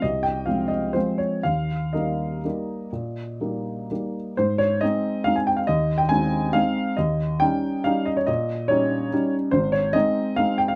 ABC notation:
X:1
M:3/4
L:1/16
Q:1/4=137
K:Ab
V:1 name="Upright piano"
e2 g2 f2 e2 c2 d2 | f4 e8- | e8- e2 z2 | c2 d2 e4 f a g f |
e3 g a4 f4 | e4 g4 f2 e d | e4 d6 z2 | c2 d2 e4 f2 g f |]
V:2 name="Upright piano"
C,,4 [F,A,C]4 [F,A,C]4 | E,,4 [G,B,E]4 [G,B,E]4 | B,,4 [G,B,E]4 [G,B,E]4 | A,,4 [A,CE]4 [A,CE]4 |
E,,4 [A,CE]4 [A,CE]4 | E,,4 [G,DE]4 [G,DE]4 | B,,4 [G,DE]4 [G,DE]4 | A,,,4 [A,CE]4 [A,CE]4 |]